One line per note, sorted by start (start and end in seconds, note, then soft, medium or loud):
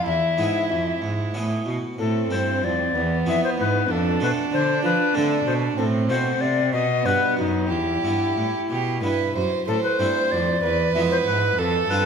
0.06 0.35 E2 soft
0.06 0.15 E2 medium
0.06 1.49 E4 soft
0.06 1.01 E5 medium
0.38 0.67 G#2 soft
0.38 0.47 G#2 soft
0.38 0.61 B3 soft
0.38 1.08 E4 soft
0.38 1.08 G#4 soft
0.70 0.99 F2 soft
0.70 1.02 F2 soft
1.02 1.32 G#2 soft
1.02 1.35 G#2 soft
1.34 1.64 A2 soft
1.34 1.67 A2 soft
1.34 1.81 B3 soft
1.34 1.81 E4 soft
1.34 1.81 G#4 soft
1.66 1.96 B2 soft
1.66 1.75 B2 soft
1.99 2.28 A2 soft
1.99 2.31 A2 medium
1.99 2.97 C4 soft
1.99 2.33 A4 medium
2.30 2.60 G2 soft
2.30 2.65 G2 soft
2.30 2.77 C4 soft
2.30 2.77 E4 soft
2.30 2.77 A4 soft
2.30 2.66 C5 medium
2.63 2.95 F2 soft
2.63 2.92 F2 soft
2.63 3.27 D5 medium
2.95 3.24 E2 soft
2.95 3.26 E2 medium
2.95 3.90 B3 medium
3.26 3.55 F2 soft
3.26 3.35 F2 soft
3.26 3.72 B3 soft
3.26 3.73 E4 soft
3.26 3.72 G#4 soft
3.26 3.43 E5 medium
3.44 3.50 C5 medium
3.58 3.87 G#2 soft
3.58 3.90 G#2 medium
3.58 3.93 B4 medium
3.89 4.18 F2 soft
3.89 4.21 F2 medium
3.89 5.79 D4 medium
3.89 4.22 A4 medium
4.20 4.49 B2 soft
4.20 4.30 B2 medium
4.20 4.43 A3 soft
4.20 4.43 C4 soft
4.20 4.89 A4 soft
4.20 4.30 B4 medium
4.51 4.80 D3 soft
4.51 4.83 D3 medium
4.51 4.84 C5 medium
4.83 5.11 F3 soft
4.83 4.92 F3 medium
4.83 5.17 B4 medium
5.15 5.45 D3 medium
5.15 5.43 D3 soft
5.15 5.37 A3 soft
5.15 5.38 C4 soft
5.15 5.60 A4 soft
5.15 5.46 A4 medium
5.46 5.74 B2 soft
5.46 5.77 B2 medium
5.46 5.54 C5 medium
5.77 6.11 A2 medium
5.77 6.06 A2 soft
5.77 6.74 C4 medium
5.77 5.85 A4 medium
6.09 6.40 B2 medium
6.09 6.38 B2 soft
6.09 6.55 A3 soft
6.09 6.56 C4 soft
6.09 6.56 F#4 soft
6.09 6.42 C5 medium
6.40 6.70 C3 soft
6.40 6.74 C3 medium
6.40 6.72 D5 medium
6.73 7.05 B2 medium
6.73 7.02 B2 soft
6.73 7.70 B3 medium
6.73 7.07 D#5 medium
7.05 7.35 G2 soft
7.05 7.13 G2 medium
7.05 7.53 B3 soft
7.05 7.53 F#4 soft
7.05 7.38 B4 medium
7.37 7.67 F#2 soft
7.37 7.72 F#2 medium
7.37 7.72 D#4 medium
7.70 8.00 E2 soft
7.70 8.04 E2 medium
7.70 9.35 E4 medium
7.70 8.61 G4 medium
8.04 8.34 G2 soft
8.04 8.36 G2 soft
8.04 8.28 B3 soft
8.04 8.76 E4 soft
8.37 8.45 A2 soft
8.37 8.67 A2 soft
8.70 9.04 B2 soft
8.70 9.00 B2 soft
8.70 9.01 G4 medium
9.02 9.32 G2 soft
9.02 9.35 G2 soft
9.02 9.27 B3 soft
9.02 9.50 E4 soft
9.02 9.35 B4 medium
9.36 9.44 F#2 soft
9.36 9.65 F#2 soft
9.36 9.68 C5 soft
9.67 9.76 A2 medium
9.67 9.97 A2 soft
9.67 9.82 A4 medium
9.67 10.60 C5 medium
9.84 10.01 B4 medium
9.99 10.28 G2 soft
9.99 10.08 G2 medium
9.99 10.45 A3 soft
9.99 10.45 C4 soft
9.99 10.46 E4 soft
9.99 10.33 C5 medium
10.31 10.63 F2 medium
10.31 10.60 F2 soft
10.31 10.94 D5 medium
10.63 10.94 E2 medium
10.63 10.92 E2 soft
10.63 11.60 B4 medium
10.94 11.26 F2 medium
10.94 11.23 F2 soft
10.94 11.40 G#3 soft
10.94 11.41 B3 soft
10.94 11.41 E4 soft
10.94 11.00 E5 medium
11.11 11.17 C5 medium
11.26 11.57 G#2 medium
11.26 11.55 G#2 soft
11.26 11.60 B4 medium
11.57 11.88 F2 medium
11.57 11.87 F2 medium
11.57 11.92 A4 medium
11.57 12.05 A4 medium
11.89 12.05 G2 medium
11.89 12.05 G2 soft
11.89 12.05 C4 soft
11.89 12.05 F4 soft
11.89 12.05 A4 soft
11.89 12.05 B4 medium